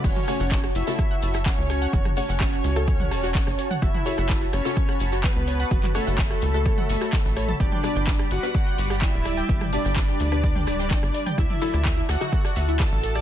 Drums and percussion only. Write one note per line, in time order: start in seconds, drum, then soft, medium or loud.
0.04 kick loud
0.04 closed hi-hat medium
0.04 crash medium
0.04 shaker medium
0.16 mid tom medium
0.28 cross-stick medium
0.28 closed hi-hat medium
0.28 open hi-hat loud
0.28 shaker medium
0.40 shaker medium
0.51 kick loud
0.51 snare loud
0.51 clap loud
0.51 closed hi-hat medium
0.51 shaker medium
0.64 cross-stick medium
0.75 closed hi-hat medium
0.75 open hi-hat loud
0.75 shaker medium
0.87 snare medium
0.87 shaker medium
0.98 kick loud
0.98 cross-stick medium
0.98 closed hi-hat medium
0.98 shaker medium
1.22 closed hi-hat medium
1.22 open hi-hat loud
1.22 shaker medium
1.33 cross-stick medium
1.33 snare medium
1.33 shaker medium
1.46 kick loud
1.46 snare loud
1.46 clap loud
1.46 closed hi-hat medium
1.46 shaker medium
1.70 cross-stick soft
1.70 closed hi-hat medium
1.70 open hi-hat loud
1.70 shaker medium
1.82 shaker medium
1.93 kick loud
1.93 closed hi-hat medium
1.93 shaker medium
2.05 cross-stick medium
2.05 mid tom medium
2.17 open hi-hat loud
2.17 open hi-hat medium
2.17 shaker medium
2.29 snare soft
2.29 shaker medium
2.40 kick loud
2.40 cross-stick medium
2.40 snare loud
2.40 clap loud
2.40 shaker medium
2.52 closed hi-hat soft
2.64 closed hi-hat medium
2.64 open hi-hat loud
2.64 shaker medium
2.76 cross-stick medium
2.76 shaker medium
2.87 kick loud
2.87 closed hi-hat medium
2.87 shaker medium
3.00 closed hi-hat soft
3.00 mid tom medium
3.11 cross-stick medium
3.11 snare medium
3.11 closed hi-hat medium
3.11 open hi-hat loud
3.11 shaker medium
3.23 snare medium
3.23 shaker medium
3.34 kick loud
3.34 snare loud
3.34 clap loud
3.34 closed hi-hat loud
3.34 shaker medium
3.47 cross-stick medium
3.47 snare soft
3.59 closed hi-hat medium
3.59 open hi-hat loud
3.59 shaker medium
3.71 mid tom medium
3.71 shaker medium
3.82 kick loud
3.82 cross-stick medium
3.82 closed hi-hat medium
3.82 shaker medium
3.94 mid tom medium
4.06 closed hi-hat medium
4.06 open hi-hat loud
4.06 shaker medium
4.18 cross-stick medium
4.18 shaker medium
4.29 kick loud
4.29 snare loud
4.29 clap loud
4.29 closed hi-hat medium
4.29 shaker medium
4.53 cross-stick medium
4.53 closed hi-hat medium
4.53 open hi-hat loud
4.53 shaker medium
4.65 snare medium
4.65 shaker medium
4.77 kick loud
4.77 closed hi-hat medium
4.77 shaker medium
4.89 cross-stick medium
5.00 closed hi-hat medium
5.00 open hi-hat loud
5.00 shaker medium
5.12 snare medium
5.12 shaker medium
5.23 kick loud
5.23 cross-stick medium
5.23 snare loud
5.23 clap loud
5.23 closed hi-hat medium
5.23 shaker medium
5.48 closed hi-hat medium
5.48 open hi-hat loud
5.48 shaker medium
5.60 shaker medium
5.71 kick loud
5.71 closed hi-hat medium
5.71 shaker medium
5.83 clap soft
5.83 mid tom medium
5.95 cross-stick medium
5.95 open hi-hat loud
5.95 open hi-hat medium
5.95 shaker medium
6.06 snare soft
6.06 shaker medium
6.18 kick loud
6.18 snare loud
6.18 clap loud
6.18 closed hi-hat medium
6.18 shaker medium
6.30 cross-stick medium
6.30 closed hi-hat soft
6.42 closed hi-hat medium
6.42 open hi-hat loud
6.42 shaker medium
6.54 shaker medium
6.66 kick loud
6.66 cross-stick medium
6.66 closed hi-hat medium
6.66 shaker medium
6.78 closed hi-hat soft
6.78 mid tom medium
6.89 snare soft
6.89 closed hi-hat medium
6.89 open hi-hat loud
6.89 shaker medium
7.00 cross-stick medium
7.00 snare medium
7.00 shaker medium
7.12 kick loud
7.12 snare loud
7.12 clap loud
7.12 closed hi-hat medium
7.12 shaker medium
7.25 snare soft
7.36 cross-stick medium
7.36 closed hi-hat medium
7.36 open hi-hat loud
7.36 shaker medium
7.49 mid tom medium
7.49 shaker medium
7.60 kick loud
7.60 closed hi-hat medium
7.60 shaker medium
7.72 mid tom medium
7.83 cross-stick medium
7.83 closed hi-hat medium
7.83 open hi-hat loud
7.83 shaker medium
7.96 shaker medium
8.07 kick loud
8.07 snare loud
8.07 clap loud
8.07 closed hi-hat medium
8.07 shaker medium
8.19 cross-stick medium
8.31 closed hi-hat medium
8.31 open hi-hat loud
8.31 shaker medium
8.43 snare medium
8.43 shaker medium
8.55 kick loud
8.55 cross-stick medium
8.55 closed hi-hat medium
8.55 shaker medium
8.78 closed hi-hat medium
8.78 open hi-hat loud
8.78 shaker medium
8.90 cross-stick medium
8.90 snare medium
8.90 shaker medium
9.02 kick loud
9.02 snare loud
9.02 clap loud
9.02 closed hi-hat medium
9.02 shaker medium
9.25 cross-stick medium
9.25 closed hi-hat medium
9.25 open hi-hat loud
9.25 shaker medium
9.37 shaker medium
9.49 kick loud
9.49 closed hi-hat medium
9.49 shaker medium
9.61 cross-stick medium
9.61 mid tom medium
9.73 open hi-hat medium
9.73 open hi-hat loud
9.73 shaker medium
9.85 snare soft
9.85 shaker medium
9.96 kick loud
9.96 cross-stick medium
9.96 snare loud
9.96 clap loud
9.96 closed hi-hat medium
9.96 shaker medium
10.09 closed hi-hat soft
10.20 closed hi-hat medium
10.20 open hi-hat loud
10.20 shaker medium
10.32 cross-stick medium
10.32 shaker medium
10.43 kick loud
10.43 closed hi-hat loud
10.43 shaker medium
10.56 closed hi-hat soft
10.56 mid tom loud
10.67 cross-stick medium
10.67 snare medium
10.67 closed hi-hat medium
10.67 open hi-hat loud
10.67 shaker medium
10.79 snare medium
10.79 shaker medium
10.91 kick loud
10.91 snare loud
10.91 clap loud
10.91 closed hi-hat medium
10.91 shaker medium
11.02 cross-stick medium
11.02 snare soft
11.14 closed hi-hat medium
11.14 open hi-hat loud
11.14 shaker medium
11.27 mid tom medium
11.27 shaker medium
11.38 kick loud
11.38 cross-stick medium
11.38 closed hi-hat loud
11.38 shaker medium
11.50 mid tom medium
11.62 closed hi-hat medium
11.62 open hi-hat loud
11.62 shaker medium
11.74 cross-stick medium
11.74 shaker medium
11.85 kick loud
11.85 snare loud
11.85 clap loud
11.85 closed hi-hat medium
11.85 shaker medium
12.09 cross-stick medium
12.09 snare loud
12.09 closed hi-hat medium
12.09 open hi-hat loud
12.09 shaker medium
12.21 shaker medium
12.32 kick loud
12.32 closed hi-hat medium
12.32 shaker medium
12.44 cross-stick soft
12.44 snare medium
12.56 closed hi-hat medium
12.56 open hi-hat loud
12.56 shaker medium
12.68 shaker medium
12.80 kick loud
12.80 cross-stick soft
12.80 snare loud
12.80 clap loud
12.80 closed hi-hat medium
12.80 shaker medium
13.03 closed hi-hat medium
13.03 open hi-hat loud
13.03 shaker medium
13.15 cross-stick medium
13.15 shaker medium